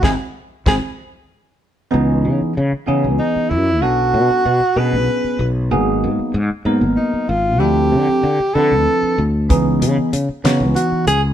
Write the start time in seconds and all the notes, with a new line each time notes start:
0.02 G#1 G#3 C4 E4 G#4, kick, snare
0.66 G#1 G#3 C4 E4 G#4, kick, snare
1.91 C#2 E3 B3 C#4 D#4 G#4
2.25 C#3
2.41 muted fretless electric bass stroke
2.57 C#3
2.72 muted fretless electric bass stroke
2.87 C#3 E3 B3 C#4 D#4 G#4
3.04 C#2
3.19 D#4
3.36 muted fretless electric bass stroke
3.49 F#2 E4
3.82 B1 F#3 B3 C#4 D4 F#4 A4
4.14 B2
4.30 muted fretless electric bass stroke
4.46 B2
4.60 muted fretless electric bass stroke
4.76 B2 F#3 B3 C#4 D4 G#4 B4
4.93 B1
5.24 muted fretless electric bass stroke
5.39 B1
5.71 G#1 F#3 A#3 B3 D#4 G#4
6.04 G#2
6.19 muted fretless electric bass stroke
6.34 G#2
6.50 muted fretless electric bass stroke
6.65 G#2 F#3 A#3 B3 D#4 A#4
6.81 G#1
6.97 D#4
7.13 muted fretless electric bass stroke
7.29 G#1 F4
7.59 D2 F3 C4 D4 E4 G4 A4
7.92 D3
8.09 muted fretless electric bass stroke
8.23 D3
8.40 muted fretless electric bass stroke
8.54 D3 F3 C4 D4 E4 A4 B4
8.71 D2
9.03 muted fretless electric bass stroke
9.18 D2
9.49 C#2 E3 B3 C#4 D#4 G#4, kick, closed hi-hat
9.82 C#3, closed hi-hat
9.98 muted fretless electric bass stroke
10.13 C#3, closed hi-hat
10.29 muted fretless electric bass stroke
10.44 C#3 E3 B3 C#4 D#4 F#4, snare, closed hi-hat
10.60 C#2
10.75 F#4, closed hi-hat
10.92 muted fretless electric bass stroke
11.07 C#2 G#4, closed hi-hat